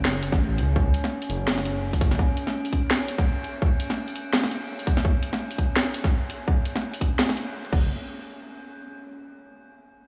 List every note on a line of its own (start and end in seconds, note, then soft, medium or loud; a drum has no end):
0.00 0.34 F#1 medium
0.00 7.91 C#4 medium
0.05 snare loud
0.05 open hi-hat soft
0.23 closed hi-hat medium
0.32 0.59 A1 loud
0.32 kick loud
0.32 snare soft
0.58 0.93 C#2 medium
0.58 closed hi-hat medium
0.76 kick loud
0.94 closed hi-hat medium
1.04 snare soft
1.22 open hi-hat medium
1.29 2.00 F#1 medium
1.29 closed hi-hat medium
1.48 snare loud
1.48 snare medium
1.58 snare medium
1.58 open hi-hat medium
1.65 closed hi-hat medium
1.93 kick medium
1.93 open hi-hat medium
2.01 2.18 F#1 medium
2.01 kick loud
2.01 closed hi-hat medium
2.11 snare medium
2.19 kick loud
2.37 closed hi-hat medium
2.47 snare soft
2.65 open hi-hat medium
2.73 kick medium
2.73 closed hi-hat medium
2.91 snare loud
2.91 open hi-hat soft
3.08 closed hi-hat medium
3.18 kick loud
3.18 snare soft
3.44 closed hi-hat medium
3.62 kick loud
3.80 closed hi-hat medium
3.90 snare soft
4.08 open hi-hat medium
4.16 closed hi-hat medium
4.33 snare loud
4.33 snare medium
4.44 snare medium
4.44 open hi-hat medium
4.51 closed hi-hat medium
4.79 open hi-hat medium
4.87 kick loud
4.87 closed hi-hat medium
4.97 snare medium
5.05 kick loud
5.23 closed hi-hat medium
5.33 snare medium
5.51 open hi-hat medium
5.58 kick medium
5.58 closed hi-hat medium
5.76 snare loud
5.76 open hi-hat soft
5.94 closed hi-hat medium
6.04 kick loud
6.04 snare soft
6.30 closed hi-hat medium
6.48 kick loud
6.65 closed hi-hat medium
6.76 snare medium
6.94 open hi-hat medium
7.01 kick medium
7.01 closed hi-hat medium
7.19 snare loud
7.19 snare medium
7.29 snare medium
7.29 open hi-hat medium
7.37 closed hi-hat medium
7.65 open hi-hat medium
7.73 7.89 F#1 medium
7.73 kick loud
7.73 crash medium